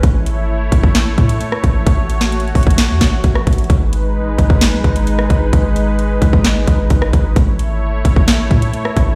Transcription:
0.03 0.39 A1 loud
0.03 3.66 A3 medium
0.03 1.85 E4 medium
0.03 3.66 C#5 loud
0.03 kick loud
0.03 closed hi-hat medium
0.26 closed hi-hat medium
0.38 0.70 G#1 loud
0.72 1.16 A1 loud
0.72 kick loud
0.72 closed hi-hat medium
0.83 kick loud
0.95 snare loud
0.95 clap loud
0.95 closed hi-hat medium
1.18 1.40 A2 loud
1.18 kick loud
1.18 closed hi-hat soft
1.29 closed hi-hat medium
1.41 closed hi-hat medium
1.52 cross-stick loud
1.64 1.86 A1 loud
1.64 kick medium
1.64 closed hi-hat medium
1.87 2.53 A1 loud
1.87 3.68 F#4 medium
1.87 kick loud
1.87 closed hi-hat loud
2.10 closed hi-hat medium
2.21 snare medium
2.32 closed hi-hat medium
2.40 closed hi-hat soft
2.48 closed hi-hat soft
2.55 2.91 A1 loud
2.55 kick loud
2.55 closed hi-hat medium
2.55 open hi-hat medium
2.63 kick loud
2.63 closed hi-hat medium
2.70 closed hi-hat medium
2.78 snare loud
2.78 clap loud
2.78 closed hi-hat medium
2.90 3.00 E2 loud
3.01 3.23 A1 loud
3.01 kick loud
3.01 snare loud
3.01 clap medium
3.01 closed hi-hat medium
3.24 3.46 A1 loud
3.24 kick loud
3.24 closed hi-hat medium
3.35 cross-stick loud
3.47 3.69 A1 loud
3.47 kick medium
3.47 closed hi-hat medium
3.53 closed hi-hat medium
3.58 closed hi-hat medium
3.64 closed hi-hat soft
3.70 4.17 G#1 loud
3.70 7.33 G#3 medium
3.70 7.33 D#4 medium
3.70 7.33 B4 loud
3.70 kick loud
3.70 closed hi-hat medium
3.93 closed hi-hat medium
4.16 4.29 A1 medium
4.27 4.38 G#1 loud
4.38 4.74 G#1 loud
4.38 kick loud
4.38 closed hi-hat medium
4.50 kick loud
4.61 snare loud
4.61 clap loud
4.61 closed hi-hat medium
4.73 4.84 B1 loud
4.84 5.28 G#1 loud
4.84 kick loud
4.84 closed hi-hat soft
4.96 closed hi-hat medium
5.07 closed hi-hat medium
5.19 cross-stick loud
5.30 5.52 G#1 loud
5.30 kick medium
5.30 closed hi-hat medium
5.53 6.19 G#1 loud
5.53 kick loud
5.53 closed hi-hat medium
5.76 closed hi-hat medium
5.99 closed hi-hat medium
6.22 6.66 G#1 loud
6.22 kick loud
6.22 closed hi-hat medium
6.33 kick loud
6.44 snare loud
6.44 clap loud
6.44 closed hi-hat medium
6.67 6.89 G#1 loud
6.67 kick loud
6.67 closed hi-hat medium
6.90 7.12 G#1 loud
6.90 kick loud
6.90 closed hi-hat medium
7.02 cross-stick loud
7.13 7.35 G#1 loud
7.13 kick loud
7.13 closed hi-hat medium
7.36 7.72 A1 loud
7.36 9.15 A3 medium
7.36 9.15 E4 medium
7.36 9.15 C#5 medium
7.36 kick loud
7.36 closed hi-hat medium
7.59 closed hi-hat medium
7.71 8.03 G#1 loud
8.05 8.49 A1 loud
8.05 kick loud
8.05 closed hi-hat medium
8.16 kick loud
8.28 snare loud
8.28 clap loud
8.28 closed hi-hat medium
8.51 8.73 A2 loud
8.51 kick loud
8.51 closed hi-hat soft
8.62 closed hi-hat medium
8.73 closed hi-hat medium
8.85 cross-stick loud
8.97 9.15 A1 loud
8.97 kick loud
8.97 closed hi-hat medium

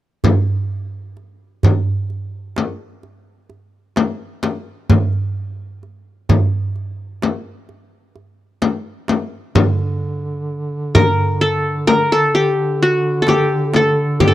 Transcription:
0.24 darbuka dum medium
0.24 frame drum medium
0.47 darbuka ka soft
1.17 darbuka ka soft
1.63 darbuka dum medium
1.63 frame drum medium
2.10 darbuka ka soft
2.56 darbuka tek medium
2.56 frame drum medium
3.03 darbuka ka soft
3.50 darbuka ka soft
3.96 darbuka tek medium
3.96 frame drum medium
4.43 darbuka tek medium
4.43 frame drum medium
4.90 darbuka dum medium
4.90 frame drum medium
5.13 darbuka ka soft
5.83 darbuka ka soft
6.29 darbuka dum medium
6.29 frame drum medium
6.76 darbuka ka soft
7.22 darbuka tek medium
7.22 frame drum medium
7.69 darbuka ka soft
8.16 darbuka ka soft
8.62 darbuka tek medium
8.62 frame drum medium
9.08 darbuka tek medium
9.08 frame drum medium
9.54 14.34 D3 medium
9.54 darbuka dum medium
9.54 frame drum medium
9.79 darbuka ka soft
10.95 11.47 A#4 medium
10.95 darbuka dum medium
10.95 frame drum medium
11.41 11.93 A4 medium
11.87 12.18 A#4 medium
11.87 darbuka tek medium
11.87 frame drum medium
12.12 13.22 A4 medium
12.34 12.88 G4 medium
12.34 darbuka ka soft
12.82 13.35 F#4 medium
13.22 13.76 A4 medium
13.27 14.20 G4 medium
13.27 darbuka tek medium
13.27 frame drum medium
13.74 14.27 A4 medium
13.74 darbuka tek medium
13.74 frame drum medium
14.20 14.34 G4 medium
14.20 darbuka dum medium
14.20 frame drum medium
14.28 14.34 A4 medium

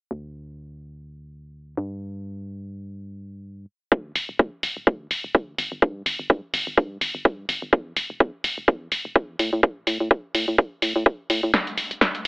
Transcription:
0.11 1.75 D2 medium
1.77 3.66 G2 medium
3.92 4.12 D2 loud
3.92 kick loud
4.16 4.27 D1 medium
4.16 open hi-hat loud
4.29 4.37 D1 medium
4.39 4.50 D2 loud
4.39 kick loud
4.63 4.74 D1 medium
4.63 open hi-hat loud
4.77 4.85 D1 medium
4.87 5.07 D2 medium
4.87 kick loud
5.11 5.22 D1 medium
5.11 open hi-hat medium
5.24 5.36 D1 medium
5.35 5.55 D2 medium
5.35 kick loud
5.58 5.69 G1 medium
5.58 open hi-hat loud
5.72 5.80 G1 medium
5.82 6.02 G2 medium
5.82 kick loud
6.06 6.17 G1 medium
6.06 open hi-hat loud
6.19 6.28 G1 medium
6.30 6.41 G2 loud
6.30 kick loud
6.54 6.65 G1 medium
6.54 open hi-hat loud
6.67 6.76 G1 medium
6.77 6.98 G2 medium
6.77 kick loud
7.01 7.12 G1 medium
7.01 open hi-hat loud
7.15 7.27 G1 medium
7.25 7.45 G2 medium
7.25 kick loud
7.49 7.60 G1 medium
7.49 open hi-hat loud
7.62 7.71 G1 medium
7.73 7.93 E2 medium
7.73 kick loud
7.96 8.08 E1 medium
7.96 open hi-hat loud
8.10 8.18 E1 medium
8.20 8.31 E2 loud
8.20 kick loud
8.44 8.55 E1 medium
8.44 open hi-hat loud
8.58 8.66 E1 medium
8.68 8.88 E2 medium
8.68 kick loud
8.92 9.03 E1 medium
8.92 open hi-hat loud
9.05 9.17 E1 medium
9.15 9.36 E2 medium
9.15 kick loud
9.39 9.50 A2 medium
9.39 open hi-hat loud
9.53 9.61 A2 medium
9.63 9.83 A1 loud
9.63 kick loud
9.87 9.98 A2 medium
9.87 open hi-hat loud
10.00 10.09 A2 medium
10.11 10.22 A1 loud
10.11 kick loud
10.35 10.46 A2 medium
10.35 open hi-hat loud
10.48 10.57 A2 medium
10.58 10.69 A1 loud
10.58 kick loud
10.82 10.93 A2 medium
10.82 open hi-hat loud
10.96 11.04 A2 loud
11.06 11.17 A1 medium
11.06 kick loud
11.30 11.41 A2 loud
11.30 open hi-hat loud
11.43 11.52 A2 medium
11.54 11.74 D2 loud
11.54 kick loud
11.54 snare soft
11.54 closed hi-hat medium
11.67 closed hi-hat soft
11.77 11.88 D1 medium
11.77 open hi-hat loud
11.91 11.99 D1 medium
11.91 closed hi-hat soft
12.01 12.12 D2 loud
12.01 kick loud
12.01 snare soft
12.01 closed hi-hat medium
12.15 closed hi-hat soft

